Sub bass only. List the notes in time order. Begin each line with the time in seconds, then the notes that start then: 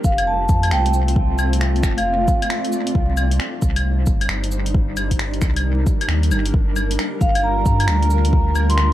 0.05 F1
0.49 F2
0.72 C2
1.83 F1
2.95 C2
3.62 C2
4.07 G1
4.28 G1
5.41 C2
6.08 D#2
6.31 G1
6.54 G1
7.21 G1
7.65 G2
7.87 D2